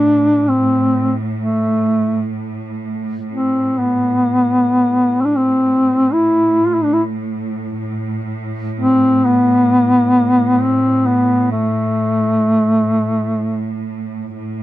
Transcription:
Already playing: cello section A2, duduk D4
0.48 duduk C4
1.40 duduk A3
3.29 cello section A2, duduk C4
3.79 duduk B3
5.21 duduk C4
5.25 duduk D4
5.36 duduk C4
6.13 duduk E4
6.67 duduk F4
6.74 duduk E4
6.84 duduk D4
6.93 duduk E4
8.80 duduk C4
9.25 duduk B3
10.61 duduk C4
11.06 duduk B3
11.51 duduk A3
14.36 cello section A2

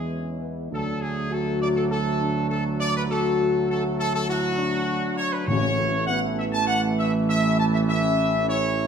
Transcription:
Already playing: tuba E2, trombone section E3 G#3, trumpet section G#4
0.11 french horn section C#4
0.41 french horn section B3
0.71 tuba D2, trombone section F#3 A3, french horn section D4, trumpet section A4
1.01 trumpet section G#4
1.31 french horn section F#4, trumpet section A4
1.61 trumpet section D5
1.76 trumpet section A4
1.90 french horn section E4, trumpet section A4
2.20 french horn section D4
2.49 trumpet section A4
2.80 trumpet section D5
2.96 trumpet section B4
3.06 french horn section F#4, trumpet section A4
3.69 trumpet section A4
3.99 trumpet section A4
4.15 trumpet section A4
4.27 french horn section E4, trumpet section F#4
4.57 french horn section D4
5.17 trumpet section C#5
5.33 trumpet section B4
5.47 tuba A1, timpani A2, trombone section E3 A3, french horn section C#4, trumpet section C#5
6.06 french horn section B3, trumpet section F#5
6.38 trumpet section E5
6.52 trumpet section A5
6.67 french horn section A3, trumpet section F#5
6.99 trumpet section E5
7.29 trumpet section E5
7.58 trumpet section A5
7.73 trumpet section E5
7.88 french horn section C#4, trumpet section E5
8.47 french horn section E4, trumpet section C#5

